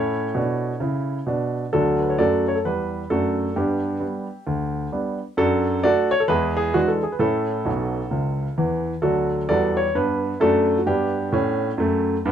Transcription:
Already playing: A2 C#4 E4 A4 C#5
0.35 B2 D4
0.80 C#3 E4
1.26 B2 D4
1.73 D2 F#3 D4 F#4 A4
2.00 B4
2.10 C#5
2.18 F#2 A3 F#4 A4 D5
2.48 C#5
2.56 A4
2.64 E2 G3 B4
3.10 F#2 A3 D4 F#4 A4
3.56 G2 B3 D4 G4
4.00 G3 B3 D4
4.47 D2
4.92 G3 B3 D4
5.37 F#2 D4 F#4 A4
5.83 A3 D4 F#4 A4 D5
6.11 C#5
6.20 A4
6.28 E2 G#3 E4 G#4 B4
6.57 G#4
6.74 E3 G#3 D4 F#4
6.88 A4
7.03 G#4
7.12 B4
7.19 A2 C#4 E4 A4
7.65 B1 B2
8.11 C#2 C#3
8.58 E2 E3
9.02 D2 F#3 D4 F#4 A4
9.49 E2 G3 F#4 A4 D5
9.77 C#5
9.95 G2 B3 B4
10.40 F#2 A3 D4 F#4 A4
10.78 F#4
10.86 G2 B3 D4 G4
11.32 A2 C#4
11.78 F#2 A3
12.25 G2 B3

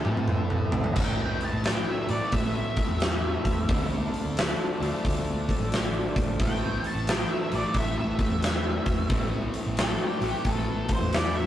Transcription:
0.05 A2 E3 A3 C4 E4 A4, high tom
0.17 high tom
0.28 mid tom
0.50 mid tom
0.72 floor tom
0.84 floor tom
0.95 A2 E3 F3 A3 A#3 C#4 A#4 G5, kick, crash
1.17 E3 A3 C4 A4
1.41 open hi-hat
1.45 A5
1.53 A2
1.64 G5, snare, open hi-hat
1.88 E5
2.09 A2 E3 A3 D5, open hi-hat
2.32 A2 E5, kick, open hi-hat
2.56 E5
2.77 kick, open hi-hat
2.89 E2
3.00 snare, open hi-hat
3.45 E2, kick, open hi-hat
3.68 D2 D3 F3 A3 D4 A4, kick, open hi-hat
4.14 open hi-hat
4.25 D2
4.37 snare, open hi-hat
4.80 D2 D3 A3 D4, open hi-hat
5.05 D2, kick, open hi-hat
5.49 kick, open hi-hat
5.60 A1
5.72 snare, open hi-hat
6.16 A1, kick, open hi-hat
6.39 A1 A2 E3 A3 C4 A4 G5, kick, open hi-hat
6.84 A5, open hi-hat
6.95 A1
7.07 G5, snare, open hi-hat
7.31 E5
7.51 A1 A2 E3 A3 D5, open hi-hat
7.74 A1 E5, kick, open hi-hat
7.98 E5
8.19 kick, open hi-hat
8.30 E2
8.42 snare, open hi-hat
8.86 E2, kick, open hi-hat
9.09 A1 A2 E3 A3 C4, kick, open hi-hat
9.54 open hi-hat
9.66 A1
9.77 A4, snare, open hi-hat
10.04 G4
10.21 A1 A2 E3 A3, open hi-hat
10.45 A1 A4, kick, open hi-hat
10.89 kick, open hi-hat
10.93 C5
11.00 E2
11.13 D5, snare, open hi-hat
11.37 E5

